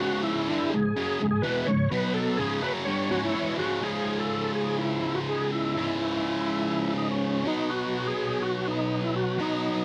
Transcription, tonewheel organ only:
0.00 F#4
0.23 E4
0.70 G#4
1.31 G#4
1.42 B4
1.66 C#5
1.90 B4
2.14 A4
2.37 G#4
2.62 B4
2.85 C#5
3.11 F#4
3.24 E4
3.59 F#4
3.83 G#4
4.19 A4
4.55 G#4
4.78 E4
5.14 F#4
5.29 G#4
5.52 E4
6.98 D#4
7.11 C#4
7.47 D#4
7.70 F#4
8.07 G#4
8.42 F#4
8.68 D#4
9.04 E4
9.16 F#4
9.41 D#4

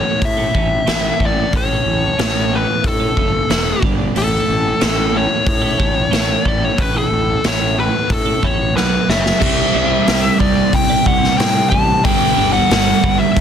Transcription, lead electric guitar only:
Already playing: C#5
0.25 E5
1.25 D5
1.57 C#5
2.55 B4
2.88 A4
4.18 A4
5.17 C#5
6.48 D5
6.65 C#5
6.81 B4
6.97 A4
7.48 C#5
7.79 B4
8.12 A4
8.44 C#5
8.76 B4
9.09 E5
10.40 D5
10.74 G5
11.07 F#5
11.37 G5
11.70 A5
12.05 G5
12.53 F#5
13.19 E5

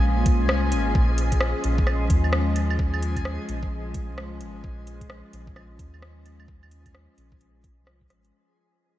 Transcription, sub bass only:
Already playing: A#1
0.41 C2
0.73 G#1
0.95 A#1
1.64 A#1
2.10 D#2
3.49 A#1
4.09 C2
4.40 G#1
4.64 A#1
5.33 A#1
5.79 D#2
7.17 A#1
7.78 C2
8.10 G#1

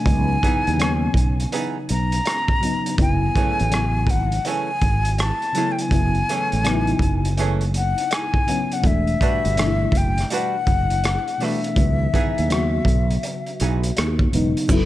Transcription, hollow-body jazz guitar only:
0.43 E3 B3 D#4 G#4
1.53 E3 B3 D#4 G#4
3.36 E3 A3 C#4 G#4
4.46 E3 A3 C#4 G#4
5.55 E3 A3 C#4 G#4
6.29 E3 A3 C#4 G#4
7.38 E3 A3 C#4 G#4
9.21 G3 D4 F#4 B4
10.31 G3 D4 F#4 B4
11.40 G3 D4 F#4 B4
12.14 E3 B3 D#4 G#4
13.61 E3 B3 D#4 G#4

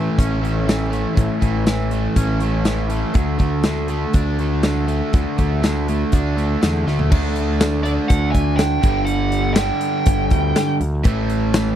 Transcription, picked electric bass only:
0.18 A1
1.17 A1
1.42 A1
2.17 A1
3.15 D2
3.40 D2
4.14 D2
5.13 D2
5.39 D2
6.12 D2
6.63 E2
6.87 D2
7.12 D2
8.10 D2
8.35 D2
8.84 G1
10.07 G1
10.31 D2
10.81 D2
11.05 A1

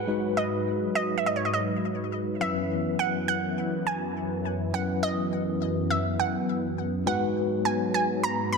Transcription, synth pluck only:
Already playing: F#5
0.37 D#5
0.95 D#5
1.18 E5
1.26 D#5
1.36 C#5
1.45 D#5
1.54 D#5
2.41 E5
2.99 F#5
3.28 F#5
3.87 G#5
4.74 F#5
5.03 D#5
5.90 E5
6.20 F#5
7.07 F#5
7.65 G#5
7.94 G#5
8.23 A#5
8.53 B5

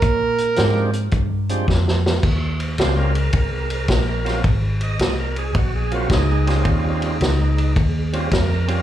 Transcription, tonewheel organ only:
0.56 F3 G#3 C4 D4 G4
1.50 F3 G#3 C4 D4 G4
2.79 G3 C4 C#4 F4 C5
2.97 A#4
3.53 A#4
4.09 A#4
4.25 F#3 A#3 C4 F4
4.83 D#5
5.20 A#4
5.38 G#4
5.57 F#4
5.76 G#4
5.91 F#3 A#3 C4 F4 F#4
6.13 D#4 G#4
6.47 G3 C4 C#4 F4
8.13 G3 C4 C#4 F4
8.33 A#4
8.68 G3 C4 C#4 F4 A#4

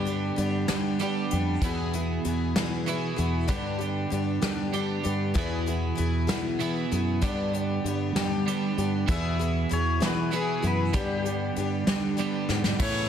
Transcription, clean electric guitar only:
Already playing: G2 D3 G3 B3 D4 G4
0.99 G2 D3 G3 B3 D4 G4
1.61 E2 B2 E3 B3 E4 G#4
2.86 E2 B2 E3 B3 E4 G#4
3.49 G2 D3 G3 B3 D4 G4
4.72 G2 D3 G3 B3 D4 G4
5.35 E2 B2 E3 B3 E4 G#4
6.59 E2 B2 E3 B3 E4 G#4
7.22 G2 D3 G3 B3 D4 G4
8.46 G2 D3 G3 B3 D4 G4
9.06 E2 B2 E3 B3 E4 G#4
10.31 E2 B2 E3 B3 E4 G#4
10.93 G2 D3 G3 B3 D4 G4
12.18 G2 D3 G3 B3 D4 G4
12.79 A2 E3 B3 C#4 E4

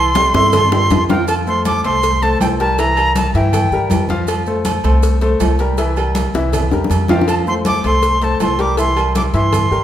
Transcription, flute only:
Already playing: C6
1.11 G5
1.29 A5
1.48 C6
1.66 D6
1.85 C6
2.22 A5
2.41 G5
2.60 A5
2.79 A#5
3.16 A5
3.35 G5
7.10 G5
7.28 A5
7.48 C6
7.67 D6
7.86 C6
8.23 A5
8.42 C6
8.61 D6
8.79 C6
9.16 D6
9.35 C6

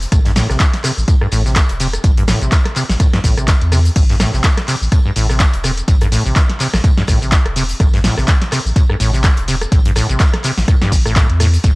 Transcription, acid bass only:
0.12 A2
0.26 G2
0.36 A2
0.50 C3
0.60 E3
0.84 C3
1.08 A2
1.21 G2
1.32 A2
1.45 C3
1.56 E3
1.80 C3
2.04 A2
2.17 G2
2.28 A2
2.41 C3
2.52 E3
2.76 C3
3.00 A2
3.13 G2
3.24 A2
3.37 C3
3.48 E3
3.72 C3
3.96 A2
4.10 G2
4.20 A2
4.33 C3
4.44 E3
4.68 C3
4.92 A2
5.05 G2
5.16 A2
5.30 C3
5.40 E3
5.64 C3
5.88 A2
6.02 G2
6.12 A2
6.25 C3
6.36 E3
6.60 C3
6.84 A2
6.97 G2
7.08 A2
7.22 C3
7.32 E3
7.56 C3
7.80 A2
7.94 G2
8.04 A2
8.18 C3
8.28 E3
8.52 C3
8.76 A2
8.90 G2
9.00 A2
9.14 C3
9.24 E3
9.48 C3
9.72 A2
9.85 G2
9.96 A2
10.09 C3
10.20 E3
10.44 C3
10.68 A2
10.81 G2
10.92 A1
11.05 A2
11.16 A2
11.40 A2
11.64 A2

